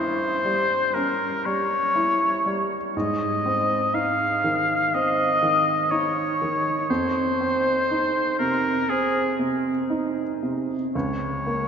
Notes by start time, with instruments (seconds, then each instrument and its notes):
Already playing: grand piano G2 C#4 E4, oboe C5
0.45 grand piano G3
0.94 grand piano C#4, oboe A#4
1.46 grand piano G3, oboe C#5
1.96 grand piano E4
2.46 grand piano G3
2.97 grand piano G#2, oboe D#5
3.46 grand piano C4
3.94 grand piano D#4, oboe F5
4.44 grand piano D#3
4.94 grand piano C4, oboe D#5
5.43 grand piano D#3
5.91 grand piano D#4, oboe C#5
6.42 grand piano D#3
6.90 grand piano F2, oboe C5
7.40 grand piano C4
7.91 grand piano D#4
8.39 grand piano C3, oboe A#4
8.89 grand piano C4, oboe G#4
9.39 grand piano C3
9.90 grand piano D#4
10.43 grand piano C3
10.95 grand piano C#2, oboe C#5
11.46 grand piano A#3